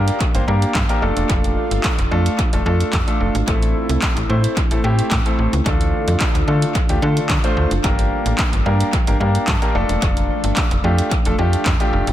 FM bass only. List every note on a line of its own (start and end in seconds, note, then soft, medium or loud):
0.00 0.11 G2 loud
0.35 0.43 G1 medium
0.48 0.65 G2 loud
0.75 0.84 G2 loud
1.02 1.11 F1 loud
1.17 1.25 E1 medium
1.30 1.56 F1 loud
1.71 1.79 G1 medium
1.98 2.07 F1 loud
2.11 2.29 F2 loud
2.53 2.61 F1 loud
2.66 2.83 F2 loud
2.93 3.02 F2 loud
3.20 3.30 F1 medium
3.35 3.43 G#1 medium
3.48 3.74 A1 loud
3.89 3.98 C2 medium
4.17 4.25 A1 loud
4.30 4.47 A2 loud
4.71 4.79 A1 loud
4.84 5.01 A2 loud
5.11 5.21 A2 loud
5.39 5.48 A1 medium
5.53 5.61 C#2 medium
5.66 5.93 D2 loud
6.08 6.16 F2 medium
6.35 6.43 D2 loud
6.48 6.65 D3 medium
6.89 6.98 D2 medium
7.02 7.20 D3 loud
7.30 7.39 D3 loud
7.57 7.66 D2 medium
7.71 7.79 F#1 medium
7.84 8.11 G1 loud
8.26 8.34 A1 medium
8.53 8.61 G1 loud
8.66 8.83 G2 loud
9.07 9.16 G1 medium
9.20 9.38 G2 loud
9.48 9.57 G2 loud
9.75 9.84 F1 loud
9.89 9.98 E1 medium
10.02 10.29 F1 loud
10.44 10.52 G1 medium
10.71 10.79 F1 loud
10.84 11.01 F2 loud
11.26 11.34 F1 loud
11.38 11.56 F2 loud
11.66 11.75 F2 loud
11.93 12.02 F1 loud
12.07 12.13 G#1 medium